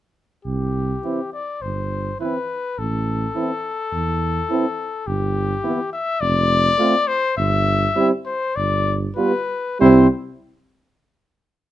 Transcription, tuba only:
0.45 C2
1.62 G1
2.78 A1
3.92 E2
5.07 G1
6.21 F1
7.37 G1
8.56 G1
9.81 C2

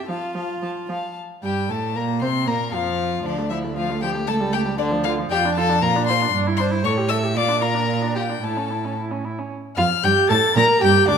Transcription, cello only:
0.08 F4
1.43 G2
1.69 A2
1.96 A#2
2.21 C3
2.47 A#2
2.74 F2
3.25 D2
4.28 C#2
4.79 D2
5.30 F2
5.82 A#2
6.33 G2
6.84 A2
7.35 A#2
8.42 A2
9.78 F2
10.04 G2
10.30 A2
10.56 A#2
10.81 G2
11.08 D2

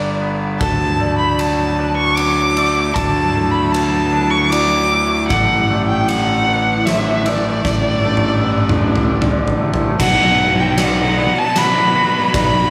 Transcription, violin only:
Already playing: D5
0.61 A5
1.19 B5
1.40 A5
1.97 C#6
2.16 D6
2.94 A5
3.51 B5
3.72 A5
4.30 C#6
4.51 D6
5.29 F#5
5.88 G5
6.08 F#5
6.85 E5
7.25 D5
10.00 F#5
10.60 G5
10.80 F#5
11.38 A5
11.58 B5
12.36 B5

